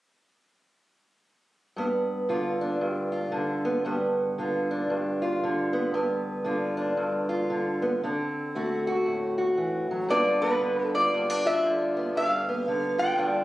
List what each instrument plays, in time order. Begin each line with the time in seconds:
1.76 steel-string acoustic guitar G2 B3
2.29 steel-string acoustic guitar D3 F4
2.61 steel-string acoustic guitar D4
2.81 steel-string acoustic guitar G2
3.12 steel-string acoustic guitar F4
3.32 steel-string acoustic guitar D3
3.65 steel-string acoustic guitar B3
3.85 steel-string acoustic guitar G2 B3
4.38 steel-string acoustic guitar D3 F4
4.71 steel-string acoustic guitar D4
4.90 steel-string acoustic guitar G2
5.22 steel-string acoustic guitar F4
5.43 steel-string acoustic guitar D3
5.73 steel-string acoustic guitar B3
5.94 steel-string acoustic guitar G2 B3
6.44 steel-string acoustic guitar D3 F4
6.77 steel-string acoustic guitar D4
6.97 steel-string acoustic guitar G2
7.29 steel-string acoustic guitar F4
7.50 steel-string acoustic guitar D3
7.82 steel-string acoustic guitar B3
8.04 steel-string acoustic guitar D3 C4
8.55 steel-string acoustic guitar A3 F#4
8.87 steel-string acoustic guitar F#4
9.06 steel-string acoustic guitar A2
9.38 steel-string acoustic guitar F#4
9.57 steel-string acoustic guitar E3
9.91 steel-string acoustic guitar F#3
10.08 steel-string acoustic guitar G2 D3 B3 D4 F4, resonator guitar played with a steel bar D5
10.42 steel-string acoustic guitar B3, resonator guitar played with a steel bar B4
10.61 steel-string acoustic guitar D3
10.84 resonator guitar played with a steel bar A4
10.94 steel-string acoustic guitar F4, resonator guitar played with a steel bar D5
11.14 steel-string acoustic guitar G2 B3
11.30 steel-string acoustic guitar D4
11.45 steel-string acoustic guitar F4, resonator guitar played with a steel bar E5
11.64 steel-string acoustic guitar D3
11.97 steel-string acoustic guitar B3
12.16 steel-string acoustic guitar G2, resonator guitar played with a steel bar F5
12.49 steel-string acoustic guitar B3
12.68 steel-string acoustic guitar D3
12.98 steel-string acoustic guitar F4, resonator guitar played with a steel bar G5
13.18 steel-string acoustic guitar G2 D4